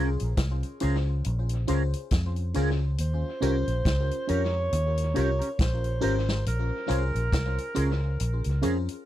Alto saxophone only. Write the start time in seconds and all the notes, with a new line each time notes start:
Already playing: G#4
3.01 C5
4.29 C#5
5.17 C#5
5.54 C#5
5.61 C5
6.04 C5
6.48 A#4